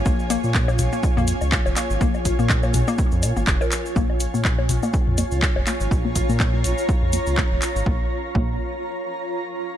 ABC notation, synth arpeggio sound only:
X:1
M:4/4
L:1/16
Q:"Swing 16ths" 1/4=123
K:Bbm
V:1 name="Synth arpeggio sound"
B, z B, z2 B, z B, z B, z2 B, z B, z | B, z2 B, z B, z B, z3 B, z B z2 | B, z2 B, z B, z B, z2 B, z B, z B, z | z B, z B, z B, z2 B, z B, z B, z2 B, |
B, z3 B,2 z8 z2 |]